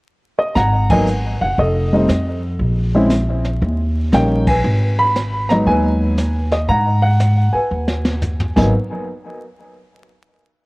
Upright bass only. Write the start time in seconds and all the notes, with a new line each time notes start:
0.56 G#1
1.41 F#1
1.58 F1
2.08 F2
2.59 A#1
3.62 D#2
4.12 A#1
4.64 G#1
5.67 D#2
6.69 G#2
7.54 muted upright bass stroke
7.71 D#2
8.56 G#1